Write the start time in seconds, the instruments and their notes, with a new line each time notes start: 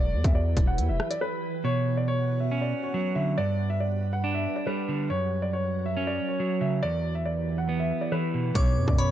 Already playing: 808-style bass E1, ambient pad E3 E4 G4 B4, grand piano D5
0.14 808-style bass E2
0.24 808-style bass E2, grand piano E5, kick, closed hi-hat
0.35 grand piano D5
0.57 808-style bass E1, kick, closed hi-hat
0.67 grand piano F#5
0.78 808-style bass E2, closed hi-hat
0.89 808-style bass E1, grand piano E5
1.00 cross-stick
1.10 grand piano D5, closed hi-hat
1.21 grand piano B4
1.64 clean electric guitar B2, ambient pad B3 F#4 C#5 F#5, grand piano C#5
1.97 grand piano D5
2.08 grand piano C#5
2.40 grand piano E5
2.51 clean electric guitar C#4
2.61 grand piano D5
2.83 grand piano C#5
2.94 clean electric guitar F#3
3.15 clean electric guitar D3, grand piano E5
3.37 clean electric guitar G2, ambient pad G3 G4 B4, grand piano D5
3.70 grand piano E5
3.80 grand piano D5
4.13 grand piano F#5
4.24 clean electric guitar D4
4.35 grand piano E5
4.56 grand piano D5
4.67 clean electric guitar G3, grand piano B4
4.88 clean electric guitar D3
5.10 clean electric guitar F#2, ambient pad F#3 F#4 A#4 C#5, grand piano C#5
5.42 grand piano D5
5.53 grand piano C#5
5.86 grand piano E5
5.97 clean electric guitar C#4
6.07 grand piano D5
6.29 grand piano C#5
6.40 clean electric guitar F#3
6.61 clean electric guitar C#3, grand piano E5
6.83 clean electric guitar E2, ambient pad E3 E4 G4 B4, grand piano D5
7.15 grand piano E5
7.25 grand piano D5
7.58 grand piano F#5
7.69 clean electric guitar B3
7.80 grand piano E5
8.01 grand piano D5
8.12 clean electric guitar E3, grand piano B4
8.34 clean electric guitar B2
8.54 808-style bass B1, clean electric guitar B2, ambient pad B3 F#4 B4 F#5, grand piano C#5, synth bell D6, kick, closed hi-hat
8.77 808-style bass F#2
8.88 808-style bass F#2, grand piano D5, kick
8.98 grand piano C#5, synth bell B5, closed hi-hat